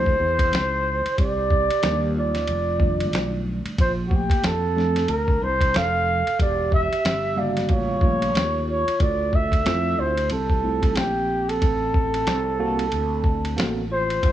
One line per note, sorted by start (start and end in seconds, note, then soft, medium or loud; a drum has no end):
0.00 0.19 D2 medium
0.00 1.19 E4 medium
0.00 1.19 C5 medium
0.06 kick medium
0.20 0.51 E2 medium
0.39 kick medium
0.39 ride medium
0.52 1.02 C#2 medium
0.52 snare loud
0.52 hi-hat pedal soft
0.52 ride medium
1.06 muted fretless electric bass stroke soft
1.06 ride medium
1.17 1.68 C2 medium
1.17 2.12 G4 medium
1.17 2.13 D5 loud
1.17 kick loud
1.17 ride medium
1.51 kick medium
1.71 muted fretless electric bass stroke soft
1.71 ride medium
1.83 2.46 D#2 medium
1.83 2.31 D#3 medium
1.83 2.32 G3 medium
1.83 2.32 A#3 medium
1.83 2.32 D4 medium
1.83 snare loud
1.83 hi-hat pedal soft
1.83 ride medium
2.15 3.42 F4 medium
2.15 3.44 D5 medium
2.35 snare soft
2.35 ride medium
2.48 3.13 F1 medium
2.48 ride medium
2.80 3.73 D#3 medium
2.80 3.74 G3 soft
2.80 3.74 A3 medium
2.80 3.74 D4 medium
2.80 kick loud
3.01 ride medium
3.13 3.63 B1 medium
3.13 snare medium
3.13 hi-hat pedal soft
3.13 ride medium
3.65 muted fretless electric bass stroke soft
3.65 ride medium
3.78 4.28 A#1 loud
3.78 3.92 F4 medium
3.78 3.93 C5 medium
3.78 kick loud
3.78 ride medium
4.06 4.11 A3 medium
4.06 4.16 F#4 medium
4.11 4.44 A#3 medium
4.11 4.48 G4 medium
4.11 kick medium
4.30 muted fretless electric bass stroke soft
4.30 kick medium
4.30 ride medium
4.44 5.06 F2 medium
4.44 5.09 C4 medium
4.44 5.11 A4 loud
4.44 snare loud
4.44 hi-hat pedal soft
4.44 ride medium
4.76 5.01 F3 medium
4.76 5.01 A3 medium
4.76 5.02 C4 medium
4.76 5.02 D4 medium
4.76 snare soft
4.96 snare soft
4.96 ride medium
5.08 5.40 D2 medium
5.08 5.42 D4 medium
5.08 5.45 A#4 medium
5.08 ride medium
5.28 kick medium
5.42 5.73 C2 medium
5.42 5.75 E4 medium
5.42 5.78 C5 loud
5.61 kick medium
5.61 ride medium
5.74 6.24 F1 medium
5.74 6.40 A4 medium
5.74 6.41 F5 loud
5.74 snare loud
5.74 hi-hat pedal soft
5.74 ride medium
6.27 ride soft
6.39 6.89 E1 loud
6.39 6.69 G4 medium
6.39 6.71 D5 medium
6.39 kick loud
6.39 ride medium
6.70 7.33 G4 medium
6.70 kick loud
6.75 7.41 E5 loud
6.93 muted fretless electric bass stroke soft
6.93 ride medium
7.05 7.67 G1 medium
7.05 snare loud
7.05 hi-hat pedal medium
7.05 ride medium
7.36 8.30 C#3 medium
7.36 8.01 G3 medium
7.36 8.30 A#3 medium
7.36 7.70 F#4 medium
7.36 7.71 D5 medium
7.36 8.30 F5 medium
7.57 snare soft
7.57 ride medium
7.69 8.01 A1 loud
7.69 8.64 F4 medium
7.69 8.65 C#5 medium
7.69 kick medium
7.69 ride medium
8.01 8.33 A#1 medium
8.01 8.43 G3 medium
8.01 8.43 A3 medium
8.01 8.43 C#4 medium
8.01 8.44 F4 medium
8.01 kick loud
8.22 ride medium
8.35 8.85 D#2 medium
8.35 snare loud
8.35 hi-hat pedal soft
8.35 ride medium
8.68 8.98 F4 medium
8.68 9.04 C#5 medium
8.88 muted fretless electric bass stroke soft
8.88 ride medium
9.00 9.63 D2 medium
9.00 9.33 F4 medium
9.00 9.37 D5 medium
9.00 kick loud
9.00 ride medium
9.32 9.98 A4 medium
9.32 10.01 E5 loud
9.32 kick loud
9.52 kick medium
9.52 ride medium
9.65 9.97 F2 medium
9.65 10.14 A3 medium
9.65 10.14 C4 medium
9.65 10.14 E4 medium
9.65 10.14 F4 medium
9.65 snare loud
9.65 hi-hat pedal soft
9.65 ride medium
9.97 10.30 D2 medium
9.97 10.30 E4 medium
9.97 10.32 C5 medium
10.18 ride medium
10.30 10.96 C2 medium
10.30 10.92 C4 medium
10.30 10.98 A4 medium
10.30 ride medium
10.50 kick medium
10.63 11.12 A3 medium
10.63 11.12 C4 medium
10.63 11.12 E4 medium
10.63 11.13 F4 medium
10.83 kick medium
10.83 ride medium
10.96 11.58 A#1 medium
10.96 11.48 C4 medium
10.96 11.51 G4 loud
10.96 snare loud
10.96 hi-hat pedal soft
10.96 ride medium
11.49 13.64 C4 medium
11.49 13.64 A4 loud
11.49 ride medium
11.62 12.24 A1 medium
11.62 kick loud
11.62 ride medium
11.94 kick loud
12.14 ride medium
12.27 12.89 C2 loud
12.27 snare loud
12.27 hi-hat pedal medium
12.27 ride medium
12.59 12.84 A#3 medium
12.59 12.84 C4 medium
12.59 12.85 F#4 medium
12.59 12.85 A4 loud
12.79 ride medium
12.92 13.54 D2 loud
12.92 ride medium
13.24 kick loud
13.45 ride medium
13.57 14.19 A1 medium
13.57 13.82 A#3 medium
13.57 13.82 C4 medium
13.57 13.82 F#4 medium
13.57 13.83 A4 medium
13.57 snare loud
13.57 hi-hat pedal soft
13.57 ride medium
13.90 14.32 F4 medium
13.90 14.32 C5 medium
14.10 ride medium
14.23 14.32 G1 loud
14.23 kick loud
14.23 ride medium